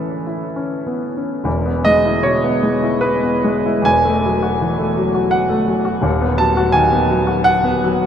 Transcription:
0, 0, Header, 1, 2, 480
1, 0, Start_track
1, 0, Key_signature, 4, "major"
1, 0, Tempo, 895522
1, 781, Tempo, 785340
1, 782, Time_signature, 3, 2, 24, 8
1, 1741, Tempo, 831025
1, 2221, Tempo, 751880
1, 2701, Tempo, 714286
1, 4621, Tempo, 790514
1, 4982, End_track
2, 0, Start_track
2, 0, Title_t, "Grand piano"
2, 0, Program_c, 0, 0
2, 0, Control_c, 0, 64, 127
2, 0, Note_on_c, 0, 45, 40
2, 0, Note_on_c, 0, 52, 30
2, 0, Note_on_c, 0, 61, 35
2, 0, Note_on_c, 0, 64, 37
2, 0, Note_on_c, 0, 69, 44
2, 0, Note_on_c, 0, 71, 55
2, 77, Note_off_c, 0, 64, 0
2, 143, Note_on_c, 0, 64, 36
2, 239, Note_off_c, 0, 52, 0
2, 298, Note_off_c, 0, 69, 0
2, 301, Note_off_c, 0, 61, 0
2, 301, Note_on_c, 0, 61, 37
2, 400, Note_off_c, 0, 64, 0
2, 464, Note_on_c, 0, 59, 35
2, 564, Note_off_c, 0, 61, 0
2, 626, Note_on_c, 0, 61, 31
2, 630, Note_off_c, 0, 59, 0
2, 759, Note_off_c, 0, 45, 0
2, 771, Note_on_c, 0, 28, 54
2, 775, Note_on_c, 0, 40, 55
2, 779, Note_off_c, 0, 61, 0
2, 794, Control_c, 0, 64, 0
2, 795, Note_off_c, 0, 71, 0
2, 904, Note_on_c, 0, 59, 49
2, 913, Control_c, 0, 64, 127
2, 1018, Note_on_c, 0, 75, 90
2, 1026, Note_on_c, 0, 56, 46
2, 1099, Note_off_c, 0, 59, 0
2, 1146, Note_on_c, 0, 64, 46
2, 1219, Note_off_c, 0, 56, 0
2, 1254, Note_on_c, 0, 73, 75
2, 1262, Note_off_c, 0, 75, 0
2, 1263, Note_on_c, 0, 47, 46
2, 1337, Note_off_c, 0, 64, 0
2, 1379, Note_on_c, 0, 59, 47
2, 1454, Note_off_c, 0, 47, 0
2, 1498, Note_on_c, 0, 56, 47
2, 1570, Note_off_c, 0, 59, 0
2, 1621, Note_on_c, 0, 64, 42
2, 1691, Note_off_c, 0, 56, 0
2, 1729, Note_on_c, 0, 71, 76
2, 1735, Note_off_c, 0, 73, 0
2, 1859, Note_on_c, 0, 59, 52
2, 1982, Note_on_c, 0, 56, 54
2, 2007, Note_off_c, 0, 64, 0
2, 2056, Note_off_c, 0, 59, 0
2, 2104, Note_on_c, 0, 64, 50
2, 2175, Note_off_c, 0, 56, 0
2, 2190, Note_off_c, 0, 40, 0
2, 2193, Note_off_c, 0, 28, 0
2, 2198, Note_on_c, 0, 40, 54
2, 2216, Note_off_c, 0, 71, 0
2, 2216, Note_on_c, 0, 80, 92
2, 2221, Note_off_c, 0, 64, 0
2, 2221, Note_on_c, 0, 28, 55
2, 2231, Control_c, 0, 64, 0
2, 2323, Control_c, 0, 64, 127
2, 2344, Note_on_c, 0, 57, 48
2, 2472, Note_on_c, 0, 54, 55
2, 2536, Note_off_c, 0, 57, 0
2, 2583, Note_on_c, 0, 66, 55
2, 2658, Note_off_c, 0, 54, 0
2, 2705, Note_on_c, 0, 52, 47
2, 2775, Note_off_c, 0, 66, 0
2, 2822, Note_on_c, 0, 57, 51
2, 2900, Note_off_c, 0, 52, 0
2, 2945, Note_on_c, 0, 54, 53
2, 3017, Note_off_c, 0, 57, 0
2, 3060, Note_on_c, 0, 66, 49
2, 3138, Note_off_c, 0, 54, 0
2, 3170, Note_on_c, 0, 78, 82
2, 3184, Note_off_c, 0, 80, 0
2, 3294, Note_on_c, 0, 57, 52
2, 3415, Note_on_c, 0, 54, 54
2, 3449, Note_off_c, 0, 66, 0
2, 3495, Note_off_c, 0, 57, 0
2, 3534, Note_on_c, 0, 66, 57
2, 3616, Note_off_c, 0, 54, 0
2, 3630, Note_off_c, 0, 40, 0
2, 3643, Note_off_c, 0, 28, 0
2, 3646, Note_on_c, 0, 27, 57
2, 3651, Note_on_c, 0, 39, 61
2, 3662, Note_off_c, 0, 78, 0
2, 3663, Note_off_c, 0, 66, 0
2, 3681, Control_c, 0, 64, 0
2, 3778, Note_on_c, 0, 59, 50
2, 3787, Control_c, 0, 64, 127
2, 3891, Note_on_c, 0, 81, 86
2, 3900, Note_on_c, 0, 54, 58
2, 3973, Note_off_c, 0, 59, 0
2, 4018, Note_on_c, 0, 66, 62
2, 4094, Note_off_c, 0, 54, 0
2, 4121, Note_on_c, 0, 80, 88
2, 4128, Note_on_c, 0, 51, 57
2, 4137, Note_off_c, 0, 81, 0
2, 4213, Note_off_c, 0, 66, 0
2, 4251, Note_on_c, 0, 59, 58
2, 4328, Note_off_c, 0, 51, 0
2, 4373, Note_on_c, 0, 54, 54
2, 4448, Note_off_c, 0, 59, 0
2, 4488, Note_on_c, 0, 66, 55
2, 4569, Note_off_c, 0, 54, 0
2, 4604, Note_on_c, 0, 78, 98
2, 4611, Note_off_c, 0, 80, 0
2, 4725, Note_on_c, 0, 59, 61
2, 4847, Note_on_c, 0, 54, 63
2, 4876, Note_off_c, 0, 66, 0
2, 4927, Note_off_c, 0, 59, 0
2, 4982, Note_off_c, 0, 27, 0
2, 4982, Note_off_c, 0, 39, 0
2, 4982, Note_off_c, 0, 54, 0
2, 4982, Note_off_c, 0, 78, 0
2, 4982, End_track
0, 0, End_of_file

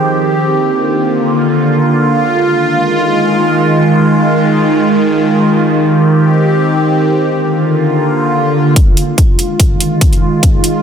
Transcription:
0, 0, Header, 1, 3, 480
1, 0, Start_track
1, 0, Tempo, 500000
1, 10391, End_track
2, 0, Start_track
2, 0, Title_t, "Ambient pad"
2, 0, Program_c, 0, 92
2, 0, Note_on_c, 0, 51, 76
2, 0, Note_on_c, 0, 60, 69
2, 0, Note_on_c, 0, 67, 82
2, 396, Note_off_c, 0, 51, 0
2, 396, Note_off_c, 0, 60, 0
2, 396, Note_off_c, 0, 67, 0
2, 412, Note_on_c, 0, 50, 75
2, 412, Note_on_c, 0, 58, 70
2, 412, Note_on_c, 0, 65, 82
2, 1996, Note_off_c, 0, 50, 0
2, 1996, Note_off_c, 0, 58, 0
2, 2011, Note_on_c, 0, 51, 78
2, 2012, Note_on_c, 0, 56, 68
2, 5173, Note_off_c, 0, 65, 0
2, 5180, Note_off_c, 0, 56, 0
2, 5212, Note_on_c, 0, 60, 69
2, 5213, Note_on_c, 0, 67, 84
2, 6773, Note_off_c, 0, 51, 0
2, 6796, Note_off_c, 0, 60, 0
2, 6796, Note_off_c, 0, 67, 0
2, 6812, Note_on_c, 0, 50, 77
2, 6812, Note_on_c, 0, 58, 67
2, 6812, Note_on_c, 0, 65, 85
2, 8396, Note_off_c, 0, 50, 0
2, 8396, Note_off_c, 0, 58, 0
2, 8396, Note_off_c, 0, 65, 0
2, 8412, Note_on_c, 0, 51, 76
2, 8412, Note_on_c, 0, 56, 68
2, 8412, Note_on_c, 0, 65, 86
2, 10391, Note_off_c, 0, 51, 0
2, 10391, Note_off_c, 0, 56, 0
2, 10391, Note_off_c, 0, 65, 0
2, 10391, End_track
3, 0, Start_track
3, 0, Title_t, "Drums"
3, 8412, Note_on_c, 9, 36, 89
3, 8412, Note_on_c, 9, 42, 75
3, 8508, Note_off_c, 9, 36, 0
3, 8508, Note_off_c, 9, 42, 0
3, 8612, Note_on_c, 9, 42, 52
3, 8708, Note_off_c, 9, 42, 0
3, 8812, Note_on_c, 9, 36, 94
3, 8812, Note_on_c, 9, 42, 78
3, 8908, Note_off_c, 9, 36, 0
3, 8908, Note_off_c, 9, 42, 0
3, 9012, Note_on_c, 9, 42, 52
3, 9108, Note_off_c, 9, 42, 0
3, 9212, Note_on_c, 9, 36, 96
3, 9212, Note_on_c, 9, 42, 77
3, 9308, Note_off_c, 9, 36, 0
3, 9308, Note_off_c, 9, 42, 0
3, 9412, Note_on_c, 9, 42, 51
3, 9508, Note_off_c, 9, 42, 0
3, 9612, Note_on_c, 9, 36, 92
3, 9612, Note_on_c, 9, 42, 80
3, 9708, Note_off_c, 9, 36, 0
3, 9708, Note_off_c, 9, 42, 0
3, 9721, Note_on_c, 9, 42, 36
3, 9817, Note_off_c, 9, 42, 0
3, 10012, Note_on_c, 9, 36, 89
3, 10013, Note_on_c, 9, 42, 82
3, 10108, Note_off_c, 9, 36, 0
3, 10109, Note_off_c, 9, 42, 0
3, 10212, Note_on_c, 9, 42, 53
3, 10308, Note_off_c, 9, 42, 0
3, 10391, End_track
0, 0, End_of_file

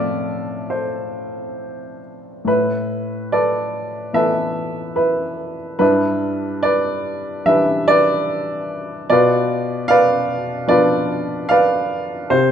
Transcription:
0, 0, Header, 1, 2, 480
1, 0, Start_track
1, 0, Tempo, 870827
1, 1357, Tempo, 836820
1, 1358, Time_signature, 4, 2, 24, 8
1, 3277, Tempo, 826446
1, 4717, Tempo, 806452
1, 7234, End_track
2, 0, Start_track
2, 0, Title_t, "Grand piano"
2, 0, Program_c, 0, 0
2, 0, Control_c, 0, 64, 127
2, 0, Note_on_c, 0, 45, 60
2, 0, Note_on_c, 0, 53, 37
2, 0, Note_on_c, 0, 57, 36
2, 0, Note_on_c, 0, 60, 41
2, 0, Note_on_c, 0, 69, 67
2, 0, Note_on_c, 0, 74, 74
2, 0, Note_on_c, 0, 76, 72
2, 0, Note_on_c, 0, 77, 88
2, 368, Note_off_c, 0, 69, 0
2, 386, Note_on_c, 0, 72, 52
2, 392, Note_on_c, 0, 69, 35
2, 398, Note_off_c, 0, 74, 0
2, 1099, Note_off_c, 0, 72, 0
2, 1332, Note_off_c, 0, 45, 0
2, 1333, Note_off_c, 0, 53, 0
2, 1334, Note_off_c, 0, 57, 0
2, 1335, Note_off_c, 0, 60, 0
2, 1339, Note_off_c, 0, 69, 0
2, 1348, Note_on_c, 0, 45, 51
2, 1364, Control_c, 0, 64, 0
2, 1364, Note_on_c, 0, 64, 49
2, 1365, Note_on_c, 0, 71, 68
2, 1366, Note_off_c, 0, 77, 0
2, 1367, Note_off_c, 0, 76, 0
2, 1477, Control_c, 0, 64, 127
2, 1846, Note_off_c, 0, 71, 0
2, 1851, Note_on_c, 0, 74, 77
2, 1854, Note_on_c, 0, 71, 57
2, 1857, Note_on_c, 0, 69, 59
2, 2303, Note_off_c, 0, 64, 0
2, 2314, Note_off_c, 0, 71, 0
2, 2314, Note_on_c, 0, 52, 39
2, 2316, Note_on_c, 0, 59, 41
2, 2317, Note_on_c, 0, 57, 38
2, 2318, Note_off_c, 0, 69, 0
2, 2321, Note_on_c, 0, 76, 77
2, 2323, Note_on_c, 0, 71, 57
2, 2326, Note_on_c, 0, 69, 54
2, 2342, Note_off_c, 0, 74, 0
2, 2778, Note_off_c, 0, 76, 0
2, 2781, Note_off_c, 0, 71, 0
2, 2789, Note_on_c, 0, 71, 66
2, 2795, Note_on_c, 0, 64, 51
2, 3131, Note_off_c, 0, 71, 0
2, 3250, Note_off_c, 0, 45, 0
2, 3251, Note_off_c, 0, 52, 0
2, 3252, Note_off_c, 0, 59, 0
2, 3252, Note_off_c, 0, 64, 0
2, 3253, Note_off_c, 0, 57, 0
2, 3257, Note_off_c, 0, 69, 0
2, 3265, Note_on_c, 0, 71, 78
2, 3269, Note_on_c, 0, 43, 55
2, 3275, Note_on_c, 0, 64, 56
2, 3276, Note_on_c, 0, 62, 58
2, 3286, Control_c, 0, 64, 0
2, 3378, Control_c, 0, 64, 127
2, 3752, Note_on_c, 0, 74, 85
2, 3754, Note_off_c, 0, 71, 0
2, 3763, Note_on_c, 0, 71, 58
2, 4214, Note_off_c, 0, 74, 0
2, 4216, Note_off_c, 0, 64, 0
2, 4217, Note_off_c, 0, 62, 0
2, 4232, Note_on_c, 0, 52, 43
2, 4233, Note_on_c, 0, 55, 39
2, 4234, Note_on_c, 0, 62, 48
2, 4234, Note_on_c, 0, 76, 86
2, 4241, Note_off_c, 0, 71, 0
2, 4250, Note_on_c, 0, 71, 55
2, 4478, Note_on_c, 0, 74, 96
2, 4481, Note_off_c, 0, 71, 0
2, 4484, Note_off_c, 0, 76, 0
2, 4490, Note_on_c, 0, 71, 59
2, 4938, Note_off_c, 0, 74, 0
2, 5173, Note_off_c, 0, 43, 0
2, 5173, Note_off_c, 0, 52, 0
2, 5174, Note_off_c, 0, 55, 0
2, 5174, Note_off_c, 0, 62, 0
2, 5183, Note_off_c, 0, 71, 0
2, 5197, Note_on_c, 0, 74, 90
2, 5199, Note_on_c, 0, 47, 68
2, 5208, Control_c, 0, 64, 0
2, 5210, Note_on_c, 0, 65, 64
2, 5211, Note_on_c, 0, 71, 67
2, 5300, Control_c, 0, 64, 127
2, 5647, Note_off_c, 0, 74, 0
2, 5664, Note_on_c, 0, 77, 98
2, 5670, Note_off_c, 0, 71, 0
2, 5677, Note_on_c, 0, 74, 72
2, 5679, Note_on_c, 0, 71, 74
2, 6119, Note_off_c, 0, 77, 0
2, 6127, Note_off_c, 0, 65, 0
2, 6134, Note_off_c, 0, 74, 0
2, 6134, Note_on_c, 0, 53, 49
2, 6139, Note_on_c, 0, 59, 45
2, 6143, Note_on_c, 0, 74, 87
2, 6145, Note_on_c, 0, 62, 51
2, 6146, Note_off_c, 0, 71, 0
2, 6155, Note_on_c, 0, 65, 63
2, 6155, Note_on_c, 0, 71, 65
2, 6621, Note_on_c, 0, 77, 92
2, 6624, Note_off_c, 0, 74, 0
2, 6627, Note_off_c, 0, 71, 0
2, 6632, Note_on_c, 0, 74, 68
2, 6635, Note_on_c, 0, 71, 68
2, 7084, Note_off_c, 0, 53, 0
2, 7086, Note_off_c, 0, 59, 0
2, 7089, Note_off_c, 0, 62, 0
2, 7090, Note_off_c, 0, 47, 0
2, 7094, Note_off_c, 0, 74, 0
2, 7095, Note_off_c, 0, 65, 0
2, 7095, Note_off_c, 0, 71, 0
2, 7106, Note_on_c, 0, 48, 65
2, 7106, Note_on_c, 0, 72, 82
2, 7113, Note_on_c, 0, 67, 59
2, 7121, Control_c, 0, 64, 0
2, 7127, Note_off_c, 0, 77, 0
2, 7229, Control_c, 0, 64, 127
2, 7234, Note_off_c, 0, 48, 0
2, 7234, Note_off_c, 0, 67, 0
2, 7234, Note_off_c, 0, 72, 0
2, 7234, End_track
0, 0, End_of_file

